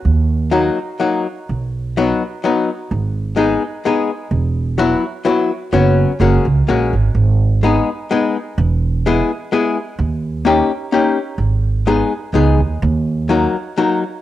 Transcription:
<<
  \new Staff \with { instrumentName = "Hollow-body jazz guitar" } { \time 3/4 \key gis \minor \tempo 4 = 127 r4 <fis ais dis' fis'>8 r8 <fis ais dis' fis'>8 r8 | r4 <fis b dis' fis'>8 r8 <fis b dis' fis'>8 r8 | r4 <gis b dis' gis'>8 r8 <gis b dis' gis'>8 r8 | r4 <fis b e' fis'>8 r8 <fis b e' fis'>8 r8 |
<fis b cis' fis'>4 <gis ais cis' fis'>8 r8 <gis ais cis' fis'>8 r8 | r4 <gis b dis' gis'>8 r8 <gis b dis' gis'>8 r8 | r4 <gis b e' gis'>8 r8 <gis b e' gis'>8 r8 | r4 <ais cis' dis' g'>8 r8 <ais cis' dis' g'>8 r8 |
r4 <gis b dis' gis'>8 r8 <gis b dis' gis'>8 r8 | r4 <fis ais dis' fis'>8 r8 <fis ais dis' fis'>8 r8 | }
  \new Staff \with { instrumentName = "Upright bass" } { \clef bass \time 3/4 \key gis \minor dis,2 r4 | b,,2 r4 | gis,,2 r4 | e,,2 r4 |
fis,,4 fis,,8 cis,8 ais,,8 gis,,8 | gis,,2 r4 | e,,2 r4 | dis,2 r4 |
gis,,2 cis,8 dis,8 | dis,2 r4 | }
>>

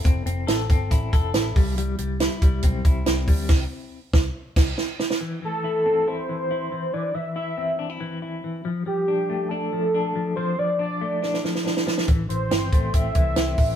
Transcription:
<<
  \new Staff \with { instrumentName = "Soft synth lead" } { \time 4/4 \key a \minor \tempo 4 = 140 r1 | r1 | r1 | r8 a'4. c''2 |
d''8 e''8 e''4. r4. | r8 g'4. a'2 | c''8 d''8 d''4. r4. | r8 c''4. e''2 | }
  \new Staff \with { instrumentName = "Clean electric guitar" } { \time 4/4 \key a \minor <c' e' a'>8 c'8 a'8 c'8 e'8 a'8 e'8 g8 | g8 g8 e'8 g8 c'8 e'8 c'8 g8 | r1 | e8 e8 e'8 c'8 e'8 e8 e'8 e8 |
e8 e8 e'8 c'8 d'16 e'16 e8 e'8 e8 | f8 f8 d'8 a8 d'8 f8 d'8 f8 | f8 f8 d'8 a8 d'8 f8 d'8 f8 | e8 e8 c'8 a8 c'8 e8 c'8 e8 | }
  \new Staff \with { instrumentName = "Fingered electric bass" } { \clef bass \time 4/4 \key a \minor f,,8 f,,8 a,,8 g,,8 a,,8 f,,8 a,,8 c,8~ | c,8 c,8. r16 c,8 b,,8 c,8 c,8 d,8 | c,8 r4 c,8 r8 c,8 r4 | r1 |
r1 | r1 | r1 | a,,8 a,,8 g,,8 a,,8 a,,8 c,8 c,8 a,,8 | }
  \new DrumStaff \with { instrumentName = "Drums" } \drummode { \time 4/4 <hh bd>8 hh8 <hh sn>8 <hh bd>8 <hh bd>8 <hh bd>8 <hh sn>8 <hho bd>8 | hh8 hh8 <hh sn>8 <hh bd>8 <hh bd>8 <hh bd>8 <hh sn>8 <hho bd>8 | <cymc bd sn>4 r8 <bd sn>8 r8 <cymc bd sn>8 sn8 sn16 sn16 | r4 r4 r4 r4 |
r4 r4 r4 r4 | r4 r4 r4 r4 | r4 r4 sn16 sn16 sn16 sn16 sn16 sn16 sn16 sn16 | <hh bd>8 hh8 <hh sn>8 <hh bd>8 <hh bd>8 <hh bd>8 <hh sn>8 <hho bd>8 | }
>>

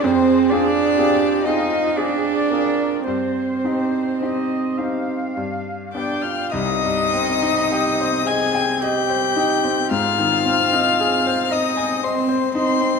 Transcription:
<<
  \new Staff \with { instrumentName = "Violin" } { \time 3/4 \key c \minor \tempo 4 = 55 c''8 d''4 ees''8 d''4 | c''2 r8 d'''16 f'''16 | ees'''4. aes'''8 g'''4 | f'''4. ees'''8 c'''8 c'''8 | }
  \new Staff \with { instrumentName = "Violin" } { \time 3/4 \key c \minor c''8 d''4 ees''8 d''4 | c''2 r8 d''16 f''16 | ees''4. aes''8 g''4 | f''4. ees''8 c''8 c''8 | }
  \new Staff \with { instrumentName = "Viola" } { \time 3/4 \key c \minor aes'4 g'8 f'8 aes'8 bes'8 | c''4 ees''8 f''4 g''8 | c'2. | c'2. | }
  \new Staff \with { instrumentName = "Grand piano" } { \time 3/4 \key c \minor f,8 <c' f' aes'>8 <c' f' aes'>8 <c' f' aes'>8 <c' f' aes'>8 <c' f' aes'>8 | g,8 <c' ees' g'>8 <c' ees' g'>8 <c' ees' g'>8 g,8 <b d' g'>8 | c,16 g,16 c'16 ees'16 g'16 c''16 ees''16 g''16 ees''16 c''16 ees'16 c'16 | aes,16 ees16 c'16 ees'16 aes'16 c''16 ees''16 aes''16 ees''16 c''16 ees'16 c'16 | }
  \new Staff \with { instrumentName = "Cello" } { \time 3/4 \key c \minor c'8 d'4 ees'8 d'4 | c'2 r8 d'16 f'16 | ees'4. aes'8 g'4 | f'4. ees'8 c'8 c'8 | }
>>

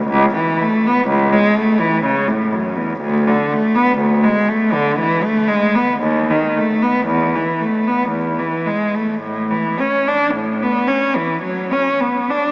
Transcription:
\new Staff \with { instrumentName = "Cello" } { \clef bass \time 3/4 \key a \major \tempo 4 = 58 cis,16 e16 a16 b16 cis,16 gis16 a16 e16 cis16 a,16 fis,16 e,16 | d,16 d16 a16 b16 d,16 gis16 a16 d16 e16 a16 gis16 b16 | dis,16 dis16 a16 b16 e,16 e16 a16 b16 e,16 e16 gis16 a16 | a,16 e16 cis'16 d'16 a,16 b16 cis'16 e16 fis16 cis'16 b16 d'16 | }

